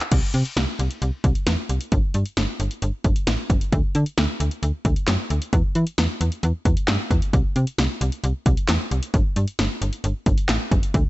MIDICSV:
0, 0, Header, 1, 3, 480
1, 0, Start_track
1, 0, Tempo, 451128
1, 123, Time_signature, 4, 2, 24, 8
1, 11804, End_track
2, 0, Start_track
2, 0, Title_t, "FM bass"
2, 0, Program_c, 0, 39
2, 124, Note_on_c, 0, 36, 105
2, 223, Note_off_c, 0, 36, 0
2, 362, Note_on_c, 0, 48, 93
2, 462, Note_off_c, 0, 48, 0
2, 602, Note_on_c, 0, 36, 106
2, 702, Note_off_c, 0, 36, 0
2, 843, Note_on_c, 0, 36, 102
2, 943, Note_off_c, 0, 36, 0
2, 1083, Note_on_c, 0, 36, 100
2, 1182, Note_off_c, 0, 36, 0
2, 1320, Note_on_c, 0, 36, 104
2, 1421, Note_off_c, 0, 36, 0
2, 1563, Note_on_c, 0, 40, 88
2, 1662, Note_off_c, 0, 40, 0
2, 1803, Note_on_c, 0, 36, 87
2, 1903, Note_off_c, 0, 36, 0
2, 2043, Note_on_c, 0, 31, 112
2, 2142, Note_off_c, 0, 31, 0
2, 2283, Note_on_c, 0, 43, 91
2, 2382, Note_off_c, 0, 43, 0
2, 2522, Note_on_c, 0, 31, 108
2, 2622, Note_off_c, 0, 31, 0
2, 2763, Note_on_c, 0, 31, 97
2, 2863, Note_off_c, 0, 31, 0
2, 3004, Note_on_c, 0, 31, 104
2, 3103, Note_off_c, 0, 31, 0
2, 3240, Note_on_c, 0, 31, 100
2, 3341, Note_off_c, 0, 31, 0
2, 3484, Note_on_c, 0, 33, 89
2, 3583, Note_off_c, 0, 33, 0
2, 3721, Note_on_c, 0, 30, 98
2, 3822, Note_off_c, 0, 30, 0
2, 3964, Note_on_c, 0, 38, 113
2, 4063, Note_off_c, 0, 38, 0
2, 4204, Note_on_c, 0, 50, 106
2, 4303, Note_off_c, 0, 50, 0
2, 4444, Note_on_c, 0, 38, 105
2, 4543, Note_off_c, 0, 38, 0
2, 4683, Note_on_c, 0, 38, 99
2, 4782, Note_off_c, 0, 38, 0
2, 4922, Note_on_c, 0, 38, 97
2, 5022, Note_off_c, 0, 38, 0
2, 5160, Note_on_c, 0, 38, 104
2, 5261, Note_off_c, 0, 38, 0
2, 5404, Note_on_c, 0, 42, 89
2, 5503, Note_off_c, 0, 42, 0
2, 5643, Note_on_c, 0, 38, 92
2, 5743, Note_off_c, 0, 38, 0
2, 5883, Note_on_c, 0, 40, 114
2, 5982, Note_off_c, 0, 40, 0
2, 6123, Note_on_c, 0, 52, 93
2, 6223, Note_off_c, 0, 52, 0
2, 6364, Note_on_c, 0, 40, 99
2, 6463, Note_off_c, 0, 40, 0
2, 6604, Note_on_c, 0, 40, 98
2, 6703, Note_off_c, 0, 40, 0
2, 6844, Note_on_c, 0, 40, 110
2, 6943, Note_off_c, 0, 40, 0
2, 7080, Note_on_c, 0, 40, 97
2, 7181, Note_off_c, 0, 40, 0
2, 7323, Note_on_c, 0, 43, 88
2, 7423, Note_off_c, 0, 43, 0
2, 7561, Note_on_c, 0, 40, 92
2, 7661, Note_off_c, 0, 40, 0
2, 7803, Note_on_c, 0, 36, 106
2, 7903, Note_off_c, 0, 36, 0
2, 8043, Note_on_c, 0, 48, 96
2, 8143, Note_off_c, 0, 48, 0
2, 8282, Note_on_c, 0, 36, 104
2, 8382, Note_off_c, 0, 36, 0
2, 8523, Note_on_c, 0, 36, 103
2, 8622, Note_off_c, 0, 36, 0
2, 8764, Note_on_c, 0, 36, 104
2, 8863, Note_off_c, 0, 36, 0
2, 9001, Note_on_c, 0, 36, 105
2, 9101, Note_off_c, 0, 36, 0
2, 9242, Note_on_c, 0, 40, 91
2, 9342, Note_off_c, 0, 40, 0
2, 9483, Note_on_c, 0, 36, 90
2, 9583, Note_off_c, 0, 36, 0
2, 9724, Note_on_c, 0, 31, 112
2, 9823, Note_off_c, 0, 31, 0
2, 9963, Note_on_c, 0, 43, 94
2, 10063, Note_off_c, 0, 43, 0
2, 10204, Note_on_c, 0, 31, 110
2, 10303, Note_off_c, 0, 31, 0
2, 10443, Note_on_c, 0, 31, 97
2, 10543, Note_off_c, 0, 31, 0
2, 10682, Note_on_c, 0, 31, 104
2, 10782, Note_off_c, 0, 31, 0
2, 10920, Note_on_c, 0, 31, 100
2, 11020, Note_off_c, 0, 31, 0
2, 11163, Note_on_c, 0, 33, 88
2, 11263, Note_off_c, 0, 33, 0
2, 11400, Note_on_c, 0, 30, 99
2, 11501, Note_off_c, 0, 30, 0
2, 11643, Note_on_c, 0, 38, 117
2, 11743, Note_off_c, 0, 38, 0
2, 11804, End_track
3, 0, Start_track
3, 0, Title_t, "Drums"
3, 4, Note_on_c, 9, 39, 90
3, 4, Note_on_c, 9, 42, 58
3, 110, Note_off_c, 9, 39, 0
3, 110, Note_off_c, 9, 42, 0
3, 123, Note_on_c, 9, 42, 81
3, 123, Note_on_c, 9, 49, 92
3, 124, Note_on_c, 9, 36, 108
3, 230, Note_off_c, 9, 36, 0
3, 230, Note_off_c, 9, 42, 0
3, 230, Note_off_c, 9, 49, 0
3, 361, Note_on_c, 9, 42, 68
3, 467, Note_off_c, 9, 42, 0
3, 483, Note_on_c, 9, 42, 51
3, 589, Note_off_c, 9, 42, 0
3, 604, Note_on_c, 9, 38, 113
3, 605, Note_on_c, 9, 42, 74
3, 710, Note_off_c, 9, 38, 0
3, 711, Note_off_c, 9, 42, 0
3, 845, Note_on_c, 9, 42, 80
3, 952, Note_off_c, 9, 42, 0
3, 964, Note_on_c, 9, 42, 49
3, 1070, Note_off_c, 9, 42, 0
3, 1083, Note_on_c, 9, 42, 66
3, 1190, Note_off_c, 9, 42, 0
3, 1320, Note_on_c, 9, 36, 88
3, 1320, Note_on_c, 9, 42, 67
3, 1426, Note_off_c, 9, 36, 0
3, 1426, Note_off_c, 9, 42, 0
3, 1440, Note_on_c, 9, 42, 51
3, 1546, Note_off_c, 9, 42, 0
3, 1560, Note_on_c, 9, 38, 120
3, 1563, Note_on_c, 9, 42, 78
3, 1667, Note_off_c, 9, 38, 0
3, 1669, Note_off_c, 9, 42, 0
3, 1803, Note_on_c, 9, 42, 70
3, 1909, Note_off_c, 9, 42, 0
3, 1922, Note_on_c, 9, 42, 62
3, 2029, Note_off_c, 9, 42, 0
3, 2042, Note_on_c, 9, 42, 78
3, 2043, Note_on_c, 9, 36, 109
3, 2148, Note_off_c, 9, 42, 0
3, 2149, Note_off_c, 9, 36, 0
3, 2279, Note_on_c, 9, 42, 66
3, 2385, Note_off_c, 9, 42, 0
3, 2400, Note_on_c, 9, 42, 50
3, 2507, Note_off_c, 9, 42, 0
3, 2522, Note_on_c, 9, 38, 112
3, 2523, Note_on_c, 9, 42, 76
3, 2628, Note_off_c, 9, 38, 0
3, 2629, Note_off_c, 9, 42, 0
3, 2764, Note_on_c, 9, 42, 78
3, 2870, Note_off_c, 9, 42, 0
3, 2882, Note_on_c, 9, 42, 48
3, 2988, Note_off_c, 9, 42, 0
3, 3002, Note_on_c, 9, 42, 68
3, 3109, Note_off_c, 9, 42, 0
3, 3239, Note_on_c, 9, 42, 68
3, 3240, Note_on_c, 9, 36, 89
3, 3346, Note_off_c, 9, 36, 0
3, 3346, Note_off_c, 9, 42, 0
3, 3361, Note_on_c, 9, 42, 53
3, 3467, Note_off_c, 9, 42, 0
3, 3480, Note_on_c, 9, 38, 116
3, 3483, Note_on_c, 9, 42, 75
3, 3587, Note_off_c, 9, 38, 0
3, 3589, Note_off_c, 9, 42, 0
3, 3721, Note_on_c, 9, 36, 95
3, 3724, Note_on_c, 9, 42, 72
3, 3828, Note_off_c, 9, 36, 0
3, 3831, Note_off_c, 9, 42, 0
3, 3844, Note_on_c, 9, 42, 61
3, 3950, Note_off_c, 9, 42, 0
3, 3963, Note_on_c, 9, 36, 110
3, 3963, Note_on_c, 9, 42, 79
3, 4070, Note_off_c, 9, 36, 0
3, 4070, Note_off_c, 9, 42, 0
3, 4201, Note_on_c, 9, 42, 68
3, 4307, Note_off_c, 9, 42, 0
3, 4322, Note_on_c, 9, 42, 52
3, 4428, Note_off_c, 9, 42, 0
3, 4443, Note_on_c, 9, 38, 117
3, 4444, Note_on_c, 9, 42, 75
3, 4549, Note_off_c, 9, 38, 0
3, 4550, Note_off_c, 9, 42, 0
3, 4685, Note_on_c, 9, 42, 81
3, 4791, Note_off_c, 9, 42, 0
3, 4802, Note_on_c, 9, 42, 49
3, 4909, Note_off_c, 9, 42, 0
3, 4923, Note_on_c, 9, 42, 69
3, 5030, Note_off_c, 9, 42, 0
3, 5160, Note_on_c, 9, 36, 93
3, 5160, Note_on_c, 9, 42, 71
3, 5266, Note_off_c, 9, 36, 0
3, 5266, Note_off_c, 9, 42, 0
3, 5281, Note_on_c, 9, 42, 52
3, 5387, Note_off_c, 9, 42, 0
3, 5401, Note_on_c, 9, 38, 114
3, 5401, Note_on_c, 9, 39, 96
3, 5403, Note_on_c, 9, 42, 75
3, 5507, Note_off_c, 9, 38, 0
3, 5507, Note_off_c, 9, 39, 0
3, 5510, Note_off_c, 9, 42, 0
3, 5644, Note_on_c, 9, 42, 71
3, 5750, Note_off_c, 9, 42, 0
3, 5764, Note_on_c, 9, 42, 62
3, 5870, Note_off_c, 9, 42, 0
3, 5882, Note_on_c, 9, 42, 83
3, 5883, Note_on_c, 9, 36, 108
3, 5989, Note_off_c, 9, 36, 0
3, 5989, Note_off_c, 9, 42, 0
3, 6120, Note_on_c, 9, 42, 66
3, 6227, Note_off_c, 9, 42, 0
3, 6242, Note_on_c, 9, 42, 51
3, 6349, Note_off_c, 9, 42, 0
3, 6363, Note_on_c, 9, 38, 118
3, 6364, Note_on_c, 9, 42, 73
3, 6470, Note_off_c, 9, 38, 0
3, 6471, Note_off_c, 9, 42, 0
3, 6605, Note_on_c, 9, 42, 81
3, 6711, Note_off_c, 9, 42, 0
3, 6724, Note_on_c, 9, 42, 49
3, 6830, Note_off_c, 9, 42, 0
3, 6843, Note_on_c, 9, 42, 70
3, 6950, Note_off_c, 9, 42, 0
3, 7080, Note_on_c, 9, 36, 89
3, 7080, Note_on_c, 9, 42, 70
3, 7186, Note_off_c, 9, 36, 0
3, 7186, Note_off_c, 9, 42, 0
3, 7202, Note_on_c, 9, 42, 54
3, 7308, Note_off_c, 9, 42, 0
3, 7321, Note_on_c, 9, 38, 117
3, 7321, Note_on_c, 9, 39, 98
3, 7324, Note_on_c, 9, 42, 76
3, 7428, Note_off_c, 9, 38, 0
3, 7428, Note_off_c, 9, 39, 0
3, 7430, Note_off_c, 9, 42, 0
3, 7561, Note_on_c, 9, 36, 94
3, 7564, Note_on_c, 9, 42, 70
3, 7667, Note_off_c, 9, 36, 0
3, 7670, Note_off_c, 9, 42, 0
3, 7684, Note_on_c, 9, 42, 61
3, 7790, Note_off_c, 9, 42, 0
3, 7803, Note_on_c, 9, 36, 112
3, 7804, Note_on_c, 9, 42, 80
3, 7910, Note_off_c, 9, 36, 0
3, 7910, Note_off_c, 9, 42, 0
3, 8042, Note_on_c, 9, 42, 67
3, 8148, Note_off_c, 9, 42, 0
3, 8162, Note_on_c, 9, 42, 50
3, 8268, Note_off_c, 9, 42, 0
3, 8283, Note_on_c, 9, 38, 114
3, 8284, Note_on_c, 9, 42, 77
3, 8390, Note_off_c, 9, 38, 0
3, 8390, Note_off_c, 9, 42, 0
3, 8525, Note_on_c, 9, 42, 83
3, 8631, Note_off_c, 9, 42, 0
3, 8642, Note_on_c, 9, 42, 48
3, 8749, Note_off_c, 9, 42, 0
3, 8764, Note_on_c, 9, 42, 70
3, 8870, Note_off_c, 9, 42, 0
3, 9000, Note_on_c, 9, 36, 93
3, 9001, Note_on_c, 9, 42, 73
3, 9107, Note_off_c, 9, 36, 0
3, 9107, Note_off_c, 9, 42, 0
3, 9122, Note_on_c, 9, 42, 53
3, 9228, Note_off_c, 9, 42, 0
3, 9241, Note_on_c, 9, 38, 119
3, 9241, Note_on_c, 9, 39, 99
3, 9244, Note_on_c, 9, 42, 78
3, 9348, Note_off_c, 9, 38, 0
3, 9348, Note_off_c, 9, 39, 0
3, 9350, Note_off_c, 9, 42, 0
3, 9485, Note_on_c, 9, 42, 71
3, 9591, Note_off_c, 9, 42, 0
3, 9604, Note_on_c, 9, 42, 62
3, 9710, Note_off_c, 9, 42, 0
3, 9723, Note_on_c, 9, 42, 81
3, 9724, Note_on_c, 9, 36, 104
3, 9830, Note_off_c, 9, 36, 0
3, 9830, Note_off_c, 9, 42, 0
3, 9961, Note_on_c, 9, 42, 70
3, 10068, Note_off_c, 9, 42, 0
3, 10082, Note_on_c, 9, 42, 51
3, 10189, Note_off_c, 9, 42, 0
3, 10203, Note_on_c, 9, 38, 122
3, 10204, Note_on_c, 9, 42, 76
3, 10310, Note_off_c, 9, 38, 0
3, 10310, Note_off_c, 9, 42, 0
3, 10445, Note_on_c, 9, 42, 78
3, 10552, Note_off_c, 9, 42, 0
3, 10562, Note_on_c, 9, 42, 48
3, 10669, Note_off_c, 9, 42, 0
3, 10683, Note_on_c, 9, 42, 69
3, 10789, Note_off_c, 9, 42, 0
3, 10919, Note_on_c, 9, 42, 70
3, 10920, Note_on_c, 9, 36, 94
3, 11025, Note_off_c, 9, 42, 0
3, 11026, Note_off_c, 9, 36, 0
3, 11040, Note_on_c, 9, 42, 53
3, 11147, Note_off_c, 9, 42, 0
3, 11161, Note_on_c, 9, 38, 122
3, 11161, Note_on_c, 9, 39, 97
3, 11163, Note_on_c, 9, 42, 80
3, 11267, Note_off_c, 9, 38, 0
3, 11267, Note_off_c, 9, 39, 0
3, 11269, Note_off_c, 9, 42, 0
3, 11401, Note_on_c, 9, 36, 96
3, 11403, Note_on_c, 9, 42, 72
3, 11507, Note_off_c, 9, 36, 0
3, 11509, Note_off_c, 9, 42, 0
3, 11523, Note_on_c, 9, 42, 62
3, 11630, Note_off_c, 9, 42, 0
3, 11643, Note_on_c, 9, 36, 110
3, 11643, Note_on_c, 9, 42, 83
3, 11749, Note_off_c, 9, 36, 0
3, 11750, Note_off_c, 9, 42, 0
3, 11804, End_track
0, 0, End_of_file